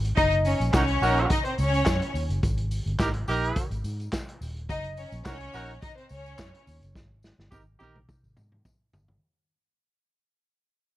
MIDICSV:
0, 0, Header, 1, 5, 480
1, 0, Start_track
1, 0, Tempo, 564972
1, 147, Time_signature, 4, 2, 24, 8
1, 9318, End_track
2, 0, Start_track
2, 0, Title_t, "String section"
2, 0, Program_c, 0, 48
2, 137, Note_on_c, 0, 63, 127
2, 141, Note_on_c, 0, 75, 127
2, 243, Note_off_c, 0, 63, 0
2, 245, Note_off_c, 0, 75, 0
2, 380, Note_on_c, 0, 61, 90
2, 382, Note_on_c, 0, 73, 85
2, 484, Note_off_c, 0, 61, 0
2, 486, Note_off_c, 0, 73, 0
2, 618, Note_on_c, 0, 73, 114
2, 619, Note_on_c, 0, 61, 105
2, 1073, Note_off_c, 0, 61, 0
2, 1073, Note_off_c, 0, 73, 0
2, 1107, Note_on_c, 0, 63, 86
2, 1110, Note_on_c, 0, 75, 106
2, 1208, Note_off_c, 0, 63, 0
2, 1210, Note_off_c, 0, 75, 0
2, 1240, Note_on_c, 0, 60, 76
2, 1241, Note_on_c, 0, 72, 80
2, 1327, Note_off_c, 0, 60, 0
2, 1328, Note_off_c, 0, 72, 0
2, 1355, Note_on_c, 0, 61, 96
2, 1355, Note_on_c, 0, 73, 115
2, 1801, Note_off_c, 0, 61, 0
2, 1802, Note_off_c, 0, 73, 0
2, 3989, Note_on_c, 0, 63, 112
2, 3991, Note_on_c, 0, 75, 127
2, 4089, Note_off_c, 0, 63, 0
2, 4091, Note_off_c, 0, 75, 0
2, 4228, Note_on_c, 0, 61, 79
2, 4228, Note_on_c, 0, 73, 94
2, 4329, Note_off_c, 0, 61, 0
2, 4329, Note_off_c, 0, 73, 0
2, 4468, Note_on_c, 0, 61, 102
2, 4469, Note_on_c, 0, 73, 120
2, 4918, Note_off_c, 0, 61, 0
2, 4919, Note_off_c, 0, 73, 0
2, 4947, Note_on_c, 0, 63, 82
2, 4949, Note_on_c, 0, 75, 102
2, 5048, Note_off_c, 0, 63, 0
2, 5050, Note_off_c, 0, 75, 0
2, 5077, Note_on_c, 0, 60, 79
2, 5077, Note_on_c, 0, 72, 83
2, 5165, Note_off_c, 0, 60, 0
2, 5166, Note_off_c, 0, 72, 0
2, 5189, Note_on_c, 0, 61, 96
2, 5190, Note_on_c, 0, 73, 115
2, 5639, Note_off_c, 0, 61, 0
2, 5640, Note_off_c, 0, 73, 0
2, 9318, End_track
3, 0, Start_track
3, 0, Title_t, "Horn section"
3, 0, Program_c, 1, 61
3, 627, Note_on_c, 1, 63, 81
3, 627, Note_on_c, 1, 66, 76
3, 627, Note_on_c, 1, 70, 80
3, 708, Note_off_c, 1, 63, 0
3, 708, Note_off_c, 1, 66, 0
3, 708, Note_off_c, 1, 70, 0
3, 867, Note_on_c, 1, 70, 108
3, 868, Note_on_c, 1, 66, 91
3, 869, Note_on_c, 1, 63, 104
3, 1071, Note_off_c, 1, 66, 0
3, 1071, Note_off_c, 1, 70, 0
3, 1072, Note_off_c, 1, 63, 0
3, 2546, Note_on_c, 1, 63, 80
3, 2546, Note_on_c, 1, 67, 68
3, 2547, Note_on_c, 1, 70, 85
3, 2627, Note_off_c, 1, 63, 0
3, 2627, Note_off_c, 1, 67, 0
3, 2628, Note_off_c, 1, 70, 0
3, 2783, Note_on_c, 1, 63, 90
3, 2783, Note_on_c, 1, 67, 89
3, 2784, Note_on_c, 1, 70, 102
3, 3096, Note_off_c, 1, 63, 0
3, 3096, Note_off_c, 1, 67, 0
3, 3097, Note_off_c, 1, 70, 0
3, 4464, Note_on_c, 1, 70, 89
3, 4465, Note_on_c, 1, 63, 79
3, 4466, Note_on_c, 1, 66, 77
3, 4546, Note_off_c, 1, 63, 0
3, 4546, Note_off_c, 1, 70, 0
3, 4547, Note_off_c, 1, 66, 0
3, 4709, Note_on_c, 1, 63, 91
3, 4709, Note_on_c, 1, 70, 98
3, 4710, Note_on_c, 1, 66, 90
3, 4861, Note_off_c, 1, 63, 0
3, 4861, Note_off_c, 1, 70, 0
3, 4862, Note_off_c, 1, 66, 0
3, 6383, Note_on_c, 1, 67, 77
3, 6384, Note_on_c, 1, 63, 79
3, 6385, Note_on_c, 1, 70, 81
3, 6466, Note_off_c, 1, 63, 0
3, 6466, Note_off_c, 1, 67, 0
3, 6467, Note_off_c, 1, 70, 0
3, 6622, Note_on_c, 1, 67, 89
3, 6624, Note_on_c, 1, 70, 100
3, 6625, Note_on_c, 1, 63, 100
3, 6777, Note_off_c, 1, 67, 0
3, 6778, Note_off_c, 1, 70, 0
3, 6779, Note_off_c, 1, 63, 0
3, 9318, End_track
4, 0, Start_track
4, 0, Title_t, "Fingered electric bass"
4, 0, Program_c, 2, 33
4, 0, Note_on_c, 2, 32, 93
4, 105, Note_off_c, 2, 32, 0
4, 149, Note_on_c, 2, 30, 112
4, 449, Note_off_c, 2, 30, 0
4, 511, Note_on_c, 2, 34, 90
4, 605, Note_off_c, 2, 34, 0
4, 627, Note_on_c, 2, 36, 102
4, 824, Note_off_c, 2, 36, 0
4, 864, Note_on_c, 2, 34, 100
4, 1062, Note_off_c, 2, 34, 0
4, 1347, Note_on_c, 2, 37, 88
4, 1544, Note_off_c, 2, 37, 0
4, 1585, Note_on_c, 2, 42, 114
4, 1690, Note_off_c, 2, 42, 0
4, 1818, Note_on_c, 2, 39, 78
4, 1926, Note_off_c, 2, 39, 0
4, 1949, Note_on_c, 2, 30, 92
4, 2043, Note_off_c, 2, 30, 0
4, 2066, Note_on_c, 2, 32, 113
4, 2368, Note_off_c, 2, 32, 0
4, 2429, Note_on_c, 2, 31, 92
4, 2523, Note_off_c, 2, 31, 0
4, 2786, Note_on_c, 2, 34, 95
4, 2983, Note_off_c, 2, 34, 0
4, 3147, Note_on_c, 2, 32, 113
4, 3242, Note_off_c, 2, 32, 0
4, 3263, Note_on_c, 2, 44, 99
4, 3461, Note_off_c, 2, 44, 0
4, 3746, Note_on_c, 2, 27, 82
4, 3987, Note_off_c, 2, 27, 0
4, 3987, Note_on_c, 2, 30, 118
4, 4288, Note_off_c, 2, 30, 0
4, 4352, Note_on_c, 2, 34, 98
4, 4445, Note_off_c, 2, 34, 0
4, 4466, Note_on_c, 2, 36, 93
4, 4663, Note_off_c, 2, 36, 0
4, 4708, Note_on_c, 2, 34, 89
4, 4905, Note_off_c, 2, 34, 0
4, 5188, Note_on_c, 2, 37, 95
4, 5384, Note_off_c, 2, 37, 0
4, 5429, Note_on_c, 2, 42, 96
4, 5532, Note_off_c, 2, 42, 0
4, 5668, Note_on_c, 2, 39, 82
4, 5772, Note_off_c, 2, 39, 0
4, 5795, Note_on_c, 2, 30, 97
4, 5907, Note_off_c, 2, 30, 0
4, 5907, Note_on_c, 2, 32, 111
4, 6209, Note_off_c, 2, 32, 0
4, 6275, Note_on_c, 2, 31, 87
4, 6367, Note_off_c, 2, 31, 0
4, 6389, Note_on_c, 2, 32, 99
4, 6586, Note_off_c, 2, 32, 0
4, 6632, Note_on_c, 2, 34, 91
4, 6827, Note_off_c, 2, 34, 0
4, 6996, Note_on_c, 2, 32, 84
4, 7088, Note_off_c, 2, 32, 0
4, 7112, Note_on_c, 2, 44, 94
4, 7308, Note_off_c, 2, 44, 0
4, 7588, Note_on_c, 2, 31, 88
4, 7786, Note_off_c, 2, 31, 0
4, 9318, End_track
5, 0, Start_track
5, 0, Title_t, "Drums"
5, 40, Note_on_c, 9, 42, 47
5, 43, Note_on_c, 9, 54, 33
5, 125, Note_off_c, 9, 42, 0
5, 128, Note_off_c, 9, 54, 0
5, 147, Note_on_c, 9, 42, 72
5, 149, Note_on_c, 9, 36, 105
5, 156, Note_on_c, 9, 54, 55
5, 232, Note_off_c, 9, 42, 0
5, 233, Note_off_c, 9, 36, 0
5, 241, Note_off_c, 9, 54, 0
5, 267, Note_on_c, 9, 42, 44
5, 352, Note_off_c, 9, 42, 0
5, 380, Note_on_c, 9, 46, 62
5, 388, Note_on_c, 9, 54, 50
5, 465, Note_off_c, 9, 46, 0
5, 473, Note_off_c, 9, 54, 0
5, 519, Note_on_c, 9, 54, 37
5, 520, Note_on_c, 9, 42, 48
5, 604, Note_off_c, 9, 54, 0
5, 605, Note_off_c, 9, 42, 0
5, 626, Note_on_c, 9, 36, 121
5, 627, Note_on_c, 9, 39, 92
5, 630, Note_on_c, 9, 38, 120
5, 631, Note_on_c, 9, 54, 97
5, 632, Note_on_c, 9, 42, 61
5, 711, Note_off_c, 9, 36, 0
5, 712, Note_off_c, 9, 39, 0
5, 715, Note_off_c, 9, 38, 0
5, 716, Note_off_c, 9, 42, 0
5, 716, Note_off_c, 9, 54, 0
5, 745, Note_on_c, 9, 42, 57
5, 830, Note_off_c, 9, 42, 0
5, 868, Note_on_c, 9, 46, 70
5, 876, Note_on_c, 9, 54, 59
5, 953, Note_off_c, 9, 46, 0
5, 961, Note_off_c, 9, 54, 0
5, 1000, Note_on_c, 9, 42, 44
5, 1085, Note_off_c, 9, 42, 0
5, 1104, Note_on_c, 9, 42, 88
5, 1108, Note_on_c, 9, 36, 120
5, 1114, Note_on_c, 9, 54, 67
5, 1189, Note_off_c, 9, 42, 0
5, 1193, Note_off_c, 9, 36, 0
5, 1199, Note_off_c, 9, 54, 0
5, 1231, Note_on_c, 9, 42, 45
5, 1316, Note_off_c, 9, 42, 0
5, 1342, Note_on_c, 9, 46, 54
5, 1348, Note_on_c, 9, 54, 56
5, 1427, Note_off_c, 9, 46, 0
5, 1433, Note_off_c, 9, 54, 0
5, 1477, Note_on_c, 9, 42, 47
5, 1484, Note_on_c, 9, 54, 40
5, 1562, Note_off_c, 9, 42, 0
5, 1569, Note_off_c, 9, 54, 0
5, 1579, Note_on_c, 9, 39, 73
5, 1582, Note_on_c, 9, 38, 106
5, 1583, Note_on_c, 9, 42, 63
5, 1585, Note_on_c, 9, 36, 102
5, 1586, Note_on_c, 9, 54, 99
5, 1664, Note_off_c, 9, 39, 0
5, 1667, Note_off_c, 9, 38, 0
5, 1668, Note_off_c, 9, 42, 0
5, 1670, Note_off_c, 9, 36, 0
5, 1671, Note_off_c, 9, 54, 0
5, 1716, Note_on_c, 9, 42, 52
5, 1801, Note_off_c, 9, 42, 0
5, 1830, Note_on_c, 9, 54, 53
5, 1834, Note_on_c, 9, 46, 63
5, 1915, Note_off_c, 9, 54, 0
5, 1919, Note_off_c, 9, 46, 0
5, 1957, Note_on_c, 9, 42, 44
5, 1959, Note_on_c, 9, 54, 35
5, 2042, Note_off_c, 9, 42, 0
5, 2044, Note_off_c, 9, 54, 0
5, 2064, Note_on_c, 9, 42, 76
5, 2066, Note_on_c, 9, 36, 107
5, 2077, Note_on_c, 9, 54, 59
5, 2149, Note_off_c, 9, 42, 0
5, 2151, Note_off_c, 9, 36, 0
5, 2161, Note_off_c, 9, 54, 0
5, 2188, Note_on_c, 9, 42, 49
5, 2273, Note_off_c, 9, 42, 0
5, 2301, Note_on_c, 9, 46, 59
5, 2305, Note_on_c, 9, 54, 52
5, 2386, Note_off_c, 9, 46, 0
5, 2390, Note_off_c, 9, 54, 0
5, 2440, Note_on_c, 9, 42, 44
5, 2525, Note_off_c, 9, 42, 0
5, 2545, Note_on_c, 9, 36, 109
5, 2546, Note_on_c, 9, 39, 85
5, 2548, Note_on_c, 9, 54, 98
5, 2549, Note_on_c, 9, 38, 117
5, 2550, Note_on_c, 9, 42, 67
5, 2630, Note_off_c, 9, 36, 0
5, 2631, Note_off_c, 9, 39, 0
5, 2633, Note_off_c, 9, 54, 0
5, 2634, Note_off_c, 9, 38, 0
5, 2635, Note_off_c, 9, 42, 0
5, 2665, Note_on_c, 9, 42, 57
5, 2750, Note_off_c, 9, 42, 0
5, 2784, Note_on_c, 9, 54, 61
5, 2794, Note_on_c, 9, 46, 69
5, 2869, Note_off_c, 9, 54, 0
5, 2879, Note_off_c, 9, 46, 0
5, 2923, Note_on_c, 9, 42, 44
5, 3008, Note_off_c, 9, 42, 0
5, 3024, Note_on_c, 9, 42, 88
5, 3027, Note_on_c, 9, 36, 116
5, 3028, Note_on_c, 9, 54, 67
5, 3109, Note_off_c, 9, 42, 0
5, 3111, Note_off_c, 9, 36, 0
5, 3113, Note_off_c, 9, 54, 0
5, 3153, Note_on_c, 9, 42, 44
5, 3158, Note_on_c, 9, 54, 35
5, 3238, Note_off_c, 9, 42, 0
5, 3243, Note_off_c, 9, 54, 0
5, 3264, Note_on_c, 9, 46, 55
5, 3267, Note_on_c, 9, 54, 60
5, 3349, Note_off_c, 9, 46, 0
5, 3352, Note_off_c, 9, 54, 0
5, 3398, Note_on_c, 9, 42, 46
5, 3409, Note_on_c, 9, 54, 39
5, 3483, Note_off_c, 9, 42, 0
5, 3494, Note_off_c, 9, 54, 0
5, 3507, Note_on_c, 9, 36, 96
5, 3508, Note_on_c, 9, 39, 73
5, 3511, Note_on_c, 9, 38, 104
5, 3511, Note_on_c, 9, 42, 56
5, 3512, Note_on_c, 9, 54, 106
5, 3592, Note_off_c, 9, 36, 0
5, 3593, Note_off_c, 9, 39, 0
5, 3596, Note_off_c, 9, 38, 0
5, 3596, Note_off_c, 9, 42, 0
5, 3597, Note_off_c, 9, 54, 0
5, 3642, Note_on_c, 9, 42, 52
5, 3727, Note_off_c, 9, 42, 0
5, 3752, Note_on_c, 9, 54, 59
5, 3760, Note_on_c, 9, 46, 71
5, 3837, Note_off_c, 9, 54, 0
5, 3845, Note_off_c, 9, 46, 0
5, 3881, Note_on_c, 9, 42, 48
5, 3966, Note_off_c, 9, 42, 0
5, 3988, Note_on_c, 9, 36, 105
5, 3990, Note_on_c, 9, 42, 77
5, 3996, Note_on_c, 9, 54, 58
5, 4073, Note_off_c, 9, 36, 0
5, 4075, Note_off_c, 9, 42, 0
5, 4081, Note_off_c, 9, 54, 0
5, 4114, Note_on_c, 9, 42, 46
5, 4199, Note_off_c, 9, 42, 0
5, 4222, Note_on_c, 9, 46, 58
5, 4225, Note_on_c, 9, 54, 50
5, 4307, Note_off_c, 9, 46, 0
5, 4310, Note_off_c, 9, 54, 0
5, 4351, Note_on_c, 9, 54, 39
5, 4361, Note_on_c, 9, 42, 48
5, 4436, Note_off_c, 9, 54, 0
5, 4446, Note_off_c, 9, 42, 0
5, 4466, Note_on_c, 9, 36, 106
5, 4466, Note_on_c, 9, 54, 88
5, 4467, Note_on_c, 9, 39, 91
5, 4470, Note_on_c, 9, 38, 114
5, 4471, Note_on_c, 9, 42, 63
5, 4551, Note_off_c, 9, 36, 0
5, 4551, Note_off_c, 9, 54, 0
5, 4552, Note_off_c, 9, 39, 0
5, 4555, Note_off_c, 9, 38, 0
5, 4556, Note_off_c, 9, 42, 0
5, 4591, Note_on_c, 9, 42, 55
5, 4676, Note_off_c, 9, 42, 0
5, 4702, Note_on_c, 9, 54, 56
5, 4717, Note_on_c, 9, 46, 67
5, 4787, Note_off_c, 9, 54, 0
5, 4802, Note_off_c, 9, 46, 0
5, 4849, Note_on_c, 9, 42, 48
5, 4934, Note_off_c, 9, 42, 0
5, 4946, Note_on_c, 9, 54, 60
5, 4949, Note_on_c, 9, 36, 113
5, 4950, Note_on_c, 9, 42, 82
5, 5030, Note_off_c, 9, 54, 0
5, 5034, Note_off_c, 9, 36, 0
5, 5035, Note_off_c, 9, 42, 0
5, 5078, Note_on_c, 9, 42, 40
5, 5163, Note_off_c, 9, 42, 0
5, 5177, Note_on_c, 9, 54, 56
5, 5185, Note_on_c, 9, 46, 62
5, 5262, Note_off_c, 9, 54, 0
5, 5270, Note_off_c, 9, 46, 0
5, 5317, Note_on_c, 9, 54, 41
5, 5321, Note_on_c, 9, 42, 42
5, 5402, Note_off_c, 9, 54, 0
5, 5406, Note_off_c, 9, 42, 0
5, 5421, Note_on_c, 9, 54, 110
5, 5428, Note_on_c, 9, 36, 103
5, 5428, Note_on_c, 9, 39, 86
5, 5431, Note_on_c, 9, 38, 112
5, 5431, Note_on_c, 9, 42, 63
5, 5506, Note_off_c, 9, 54, 0
5, 5513, Note_off_c, 9, 36, 0
5, 5513, Note_off_c, 9, 39, 0
5, 5516, Note_off_c, 9, 38, 0
5, 5516, Note_off_c, 9, 42, 0
5, 5562, Note_on_c, 9, 42, 58
5, 5647, Note_off_c, 9, 42, 0
5, 5669, Note_on_c, 9, 54, 52
5, 5678, Note_on_c, 9, 46, 66
5, 5754, Note_off_c, 9, 54, 0
5, 5763, Note_off_c, 9, 46, 0
5, 5799, Note_on_c, 9, 42, 44
5, 5802, Note_on_c, 9, 54, 33
5, 5884, Note_off_c, 9, 42, 0
5, 5887, Note_off_c, 9, 54, 0
5, 5909, Note_on_c, 9, 36, 104
5, 5913, Note_on_c, 9, 38, 64
5, 5915, Note_on_c, 9, 54, 53
5, 5994, Note_off_c, 9, 36, 0
5, 5998, Note_off_c, 9, 38, 0
5, 6000, Note_off_c, 9, 54, 0
5, 6140, Note_on_c, 9, 54, 49
5, 6153, Note_on_c, 9, 38, 71
5, 6225, Note_off_c, 9, 54, 0
5, 6238, Note_off_c, 9, 38, 0
5, 6283, Note_on_c, 9, 38, 60
5, 6368, Note_off_c, 9, 38, 0
5, 6386, Note_on_c, 9, 54, 90
5, 6388, Note_on_c, 9, 36, 105
5, 6393, Note_on_c, 9, 48, 77
5, 6471, Note_off_c, 9, 54, 0
5, 6473, Note_off_c, 9, 36, 0
5, 6478, Note_off_c, 9, 48, 0
5, 6627, Note_on_c, 9, 54, 60
5, 6634, Note_on_c, 9, 48, 81
5, 6711, Note_off_c, 9, 54, 0
5, 6718, Note_off_c, 9, 48, 0
5, 6759, Note_on_c, 9, 47, 68
5, 6844, Note_off_c, 9, 47, 0
5, 6871, Note_on_c, 9, 36, 109
5, 6871, Note_on_c, 9, 47, 82
5, 6872, Note_on_c, 9, 54, 64
5, 6956, Note_off_c, 9, 36, 0
5, 6956, Note_off_c, 9, 47, 0
5, 6957, Note_off_c, 9, 54, 0
5, 7000, Note_on_c, 9, 54, 29
5, 7085, Note_off_c, 9, 54, 0
5, 7108, Note_on_c, 9, 45, 91
5, 7111, Note_on_c, 9, 54, 55
5, 7193, Note_off_c, 9, 45, 0
5, 7196, Note_off_c, 9, 54, 0
5, 7239, Note_on_c, 9, 45, 71
5, 7324, Note_off_c, 9, 45, 0
5, 7350, Note_on_c, 9, 36, 99
5, 7351, Note_on_c, 9, 45, 96
5, 7352, Note_on_c, 9, 54, 94
5, 7435, Note_off_c, 9, 36, 0
5, 7436, Note_off_c, 9, 45, 0
5, 7436, Note_off_c, 9, 54, 0
5, 7591, Note_on_c, 9, 43, 122
5, 7595, Note_on_c, 9, 54, 55
5, 7676, Note_off_c, 9, 43, 0
5, 7680, Note_off_c, 9, 54, 0
5, 7717, Note_on_c, 9, 43, 85
5, 7802, Note_off_c, 9, 43, 0
5, 9318, End_track
0, 0, End_of_file